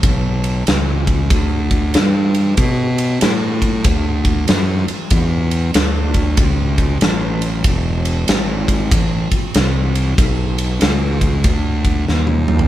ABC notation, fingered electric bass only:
X:1
M:4/4
L:1/8
Q:"Swing" 1/4=95
K:Bdor
V:1 name="Fingered electric bass" clef=bass
B,,,2 C,,2 D,,2 =G,,2 | B,,2 A,,2 D,,2 F,, z | E,,2 D,,2 C,,2 A,,,2 | E,,,2 G,,,2 A,,, z =C,,2 |
B,,,2 C,,2 D,,2 ^D,,2 |]